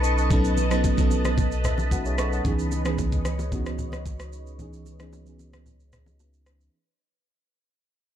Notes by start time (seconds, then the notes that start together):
Already playing: B1 F#3 B3 C#4 D#4 A4 B4 D#5 A5 C#6
0.04 shaker
0.18 shaker
0.30 F#3 B3 C#4 D#4 A4 B5, kick, low conga, shaker
0.45 shaker
0.57 low bongo, shaker
0.70 F#3 B3 C#4 D#4 A4, cross-stick, shaker
0.84 kick, high bongo, shaker
0.97 F#3 B3 C#4 D#4 A4, kick, shaker
1.11 low bongo, shaker
1.25 cross-stick, high bongo, low bongo, shaker
1.37 kick, high bongo, low conga, shaker
1.52 shaker
1.64 E5, cross-stick, low conga, shaker
1.78 low bongo, shaker
1.91 F#4 B4 F#5, kick, high bongo, shaker
2.06 G#4 C#5, shaker
2.18 A4 D#5 C#6, cross-stick, shaker
2.33 C#5 F#5, shaker
2.44 C#2 E3 B3 C#4 D#4 G#4 C#5 D#5 C#6, kick, low conga, shaker
2.59 shaker
2.72 low bongo, shaker
2.85 E3 B3 C#4 D#4 G#4, cross-stick, shaker
2.98 kick, high bongo, shaker
3.12 kick, shaker
3.25 cross-stick, low bongo, shaker
3.39 high bongo, low bongo, shaker
3.51 E3 B3 C#4 D#4 F#4, kick, high bongo, low conga, shaker
3.66 cross-stick, shaker
3.79 low conga, shaker
3.92 cross-stick, low bongo, shaker
4.06 kick, high bongo, shaker
4.20 cross-stick, shaker
4.33 shaker
4.47 shaker
4.58 E3 B3 C#4 D#4 G#4, low conga, shaker
4.73 shaker
4.86 low bongo, shaker
4.99 E3 B3 C#4 D#4 G#4, cross-stick, shaker
5.13 high bongo, shaker
5.26 E3 B3 C#4 D#4 G#4, shaker
5.39 low bongo, shaker
5.53 cross-stick, high bongo, low bongo, shaker
5.66 high bongo, low conga, shaker
5.80 shaker
5.92 cross-stick, low conga, shaker
6.06 low bongo, shaker
6.20 E5, high bongo, shaker
6.34 shaker
6.46 G#5, cross-stick, shaker
6.61 shaker